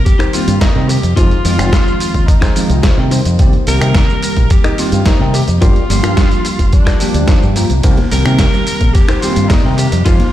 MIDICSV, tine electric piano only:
0, 0, Header, 1, 2, 480
1, 0, Start_track
1, 0, Key_signature, -3, "minor"
1, 0, Tempo, 555556
1, 1013, Time_signature, 4, 2, 24, 8
1, 8922, End_track
2, 0, Start_track
2, 0, Title_t, "Tine electric piano"
2, 0, Program_c, 0, 4
2, 0, Note_on_c, 0, 51, 81
2, 0, Note_on_c, 0, 55, 71
2, 0, Note_on_c, 0, 58, 74
2, 0, Note_on_c, 0, 60, 71
2, 0, Note_on_c, 0, 67, 87
2, 260, Note_off_c, 0, 51, 0
2, 263, Note_off_c, 0, 55, 0
2, 264, Note_off_c, 0, 58, 0
2, 266, Note_off_c, 0, 60, 0
2, 268, Note_off_c, 0, 67, 0
2, 294, Note_on_c, 0, 51, 78
2, 296, Note_on_c, 0, 55, 71
2, 299, Note_on_c, 0, 58, 70
2, 299, Note_on_c, 0, 60, 74
2, 303, Note_on_c, 0, 67, 87
2, 488, Note_off_c, 0, 51, 0
2, 489, Note_off_c, 0, 55, 0
2, 491, Note_off_c, 0, 58, 0
2, 491, Note_off_c, 0, 60, 0
2, 493, Note_off_c, 0, 67, 0
2, 648, Note_on_c, 0, 51, 75
2, 652, Note_on_c, 0, 55, 67
2, 652, Note_on_c, 0, 58, 71
2, 657, Note_on_c, 0, 60, 67
2, 658, Note_on_c, 0, 70, 81
2, 845, Note_off_c, 0, 51, 0
2, 847, Note_off_c, 0, 55, 0
2, 847, Note_off_c, 0, 58, 0
2, 850, Note_off_c, 0, 60, 0
2, 850, Note_off_c, 0, 70, 0
2, 1009, Note_on_c, 0, 51, 91
2, 1012, Note_on_c, 0, 53, 78
2, 1013, Note_on_c, 0, 56, 82
2, 1015, Note_on_c, 0, 60, 83
2, 1017, Note_on_c, 0, 65, 105
2, 1133, Note_off_c, 0, 51, 0
2, 1135, Note_off_c, 0, 53, 0
2, 1135, Note_off_c, 0, 56, 0
2, 1136, Note_off_c, 0, 60, 0
2, 1137, Note_off_c, 0, 65, 0
2, 1246, Note_on_c, 0, 51, 78
2, 1248, Note_on_c, 0, 53, 75
2, 1253, Note_on_c, 0, 56, 71
2, 1260, Note_on_c, 0, 60, 75
2, 1264, Note_on_c, 0, 65, 88
2, 2181, Note_off_c, 0, 51, 0
2, 2182, Note_off_c, 0, 53, 0
2, 2185, Note_off_c, 0, 56, 0
2, 2188, Note_off_c, 0, 60, 0
2, 2190, Note_off_c, 0, 65, 0
2, 2210, Note_on_c, 0, 51, 80
2, 2210, Note_on_c, 0, 53, 75
2, 2213, Note_on_c, 0, 56, 76
2, 2216, Note_on_c, 0, 60, 75
2, 2217, Note_on_c, 0, 65, 88
2, 2406, Note_off_c, 0, 51, 0
2, 2406, Note_off_c, 0, 53, 0
2, 2408, Note_off_c, 0, 56, 0
2, 2409, Note_off_c, 0, 60, 0
2, 2410, Note_off_c, 0, 65, 0
2, 2572, Note_on_c, 0, 51, 72
2, 2574, Note_on_c, 0, 55, 68
2, 2576, Note_on_c, 0, 58, 68
2, 2579, Note_on_c, 0, 60, 72
2, 2582, Note_on_c, 0, 70, 83
2, 2767, Note_off_c, 0, 51, 0
2, 2768, Note_off_c, 0, 55, 0
2, 2769, Note_off_c, 0, 58, 0
2, 2771, Note_off_c, 0, 60, 0
2, 2772, Note_off_c, 0, 70, 0
2, 2930, Note_on_c, 0, 51, 89
2, 2931, Note_on_c, 0, 55, 87
2, 2932, Note_on_c, 0, 58, 82
2, 2935, Note_on_c, 0, 60, 88
2, 2937, Note_on_c, 0, 67, 102
2, 3053, Note_off_c, 0, 51, 0
2, 3054, Note_off_c, 0, 55, 0
2, 3054, Note_off_c, 0, 58, 0
2, 3056, Note_off_c, 0, 60, 0
2, 3057, Note_off_c, 0, 67, 0
2, 3170, Note_on_c, 0, 51, 81
2, 3172, Note_on_c, 0, 55, 77
2, 3177, Note_on_c, 0, 58, 73
2, 3181, Note_on_c, 0, 60, 76
2, 3185, Note_on_c, 0, 67, 88
2, 4103, Note_off_c, 0, 51, 0
2, 4104, Note_off_c, 0, 55, 0
2, 4106, Note_off_c, 0, 58, 0
2, 4109, Note_off_c, 0, 60, 0
2, 4111, Note_off_c, 0, 67, 0
2, 4132, Note_on_c, 0, 51, 79
2, 4134, Note_on_c, 0, 55, 74
2, 4135, Note_on_c, 0, 58, 74
2, 4138, Note_on_c, 0, 60, 77
2, 4139, Note_on_c, 0, 67, 90
2, 4327, Note_off_c, 0, 51, 0
2, 4328, Note_off_c, 0, 55, 0
2, 4329, Note_off_c, 0, 58, 0
2, 4330, Note_off_c, 0, 60, 0
2, 4331, Note_off_c, 0, 67, 0
2, 4490, Note_on_c, 0, 51, 74
2, 4492, Note_on_c, 0, 55, 69
2, 4496, Note_on_c, 0, 58, 69
2, 4497, Note_on_c, 0, 60, 73
2, 4498, Note_on_c, 0, 70, 84
2, 4686, Note_off_c, 0, 51, 0
2, 4687, Note_off_c, 0, 55, 0
2, 4689, Note_off_c, 0, 58, 0
2, 4690, Note_off_c, 0, 60, 0
2, 4690, Note_off_c, 0, 70, 0
2, 4849, Note_on_c, 0, 53, 92
2, 4852, Note_on_c, 0, 55, 83
2, 4855, Note_on_c, 0, 58, 81
2, 4855, Note_on_c, 0, 62, 86
2, 4858, Note_on_c, 0, 67, 106
2, 4973, Note_off_c, 0, 53, 0
2, 4974, Note_off_c, 0, 55, 0
2, 4976, Note_off_c, 0, 58, 0
2, 4976, Note_off_c, 0, 62, 0
2, 4977, Note_off_c, 0, 67, 0
2, 5087, Note_on_c, 0, 53, 79
2, 5092, Note_on_c, 0, 55, 77
2, 5097, Note_on_c, 0, 58, 73
2, 5100, Note_on_c, 0, 62, 77
2, 5104, Note_on_c, 0, 67, 92
2, 6021, Note_off_c, 0, 53, 0
2, 6024, Note_off_c, 0, 55, 0
2, 6026, Note_off_c, 0, 58, 0
2, 6028, Note_off_c, 0, 62, 0
2, 6030, Note_off_c, 0, 67, 0
2, 6052, Note_on_c, 0, 53, 83
2, 6053, Note_on_c, 0, 55, 81
2, 6058, Note_on_c, 0, 58, 79
2, 6060, Note_on_c, 0, 62, 78
2, 6061, Note_on_c, 0, 67, 98
2, 6504, Note_off_c, 0, 53, 0
2, 6505, Note_off_c, 0, 55, 0
2, 6507, Note_off_c, 0, 58, 0
2, 6508, Note_off_c, 0, 62, 0
2, 6508, Note_off_c, 0, 67, 0
2, 6532, Note_on_c, 0, 53, 73
2, 6535, Note_on_c, 0, 55, 72
2, 6536, Note_on_c, 0, 58, 68
2, 6538, Note_on_c, 0, 62, 69
2, 6542, Note_on_c, 0, 65, 83
2, 6654, Note_off_c, 0, 53, 0
2, 6656, Note_off_c, 0, 55, 0
2, 6657, Note_off_c, 0, 58, 0
2, 6657, Note_off_c, 0, 62, 0
2, 6659, Note_off_c, 0, 65, 0
2, 6769, Note_on_c, 0, 51, 94
2, 6772, Note_on_c, 0, 55, 83
2, 6773, Note_on_c, 0, 58, 85
2, 6776, Note_on_c, 0, 60, 80
2, 6779, Note_on_c, 0, 67, 102
2, 6893, Note_off_c, 0, 51, 0
2, 6894, Note_off_c, 0, 55, 0
2, 6895, Note_off_c, 0, 58, 0
2, 6897, Note_off_c, 0, 60, 0
2, 6898, Note_off_c, 0, 67, 0
2, 7008, Note_on_c, 0, 51, 80
2, 7012, Note_on_c, 0, 55, 74
2, 7015, Note_on_c, 0, 58, 72
2, 7021, Note_on_c, 0, 60, 72
2, 7024, Note_on_c, 0, 67, 88
2, 7942, Note_off_c, 0, 51, 0
2, 7944, Note_off_c, 0, 55, 0
2, 7945, Note_off_c, 0, 58, 0
2, 7949, Note_off_c, 0, 60, 0
2, 7950, Note_off_c, 0, 67, 0
2, 7973, Note_on_c, 0, 51, 81
2, 7976, Note_on_c, 0, 55, 73
2, 7978, Note_on_c, 0, 58, 77
2, 7980, Note_on_c, 0, 60, 74
2, 7981, Note_on_c, 0, 67, 90
2, 8168, Note_off_c, 0, 51, 0
2, 8169, Note_off_c, 0, 55, 0
2, 8170, Note_off_c, 0, 58, 0
2, 8171, Note_off_c, 0, 60, 0
2, 8172, Note_off_c, 0, 67, 0
2, 8331, Note_on_c, 0, 51, 78
2, 8333, Note_on_c, 0, 55, 68
2, 8335, Note_on_c, 0, 58, 72
2, 8339, Note_on_c, 0, 60, 72
2, 8341, Note_on_c, 0, 70, 88
2, 8527, Note_off_c, 0, 51, 0
2, 8528, Note_off_c, 0, 55, 0
2, 8529, Note_off_c, 0, 58, 0
2, 8531, Note_off_c, 0, 60, 0
2, 8532, Note_off_c, 0, 70, 0
2, 8687, Note_on_c, 0, 51, 94
2, 8692, Note_on_c, 0, 53, 86
2, 8693, Note_on_c, 0, 56, 83
2, 8696, Note_on_c, 0, 60, 85
2, 8697, Note_on_c, 0, 65, 99
2, 8812, Note_off_c, 0, 51, 0
2, 8815, Note_off_c, 0, 53, 0
2, 8815, Note_off_c, 0, 56, 0
2, 8816, Note_off_c, 0, 60, 0
2, 8817, Note_off_c, 0, 65, 0
2, 8922, End_track
0, 0, End_of_file